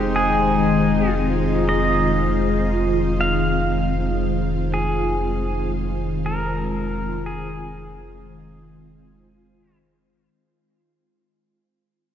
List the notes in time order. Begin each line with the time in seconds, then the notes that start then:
Already playing: F1 D#3 G#3 C4 D#4 F4 G4 C5
0.16 G#4
1.69 D#5
3.21 F5
4.74 G#4
6.26 A#4
7.26 G#4